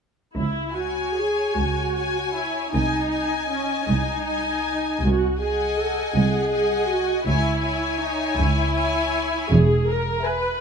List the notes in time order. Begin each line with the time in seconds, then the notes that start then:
0.35 C#2 E4
0.73 F#4 C#5 G#5
1.15 G#4
1.56 C#2 F#4
1.95 C#5 G#5
2.34 E4
2.72 C2 D#4 D#5 G#5
3.12 D#5 G#5
3.50 C#4
3.89 C2 D#4
4.26 D#5 G#5
5.03 C2 F#4
5.40 G#4 D#5 F#5 G#5
5.78 A4
6.15 C2 G#4
6.52 D#5 F#5 G#5
6.89 F#4
7.26 C#2 E4 C#5 E5 G#5
7.63 C#5 E5 G#5
8.00 D#4
8.37 C#2 E4
8.75 C#5 E5 G#5
9.50 E1 E2 G#4
9.88 A#4
10.24 B4 E5 G#5